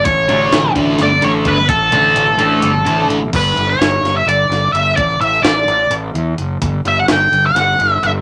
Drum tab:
CC |-------|-------|x------|-------|
HH |xxxxxxx|xxxxxxx|xxxxxxx|xxxxxxx|
SD |--o-o--|-------|--oo-o-|--o----|
BD |o--o--o|o------|o------|o------|

CC |-------|
HH |xxxxxxx|
SD |--o-o--|
BD |o------|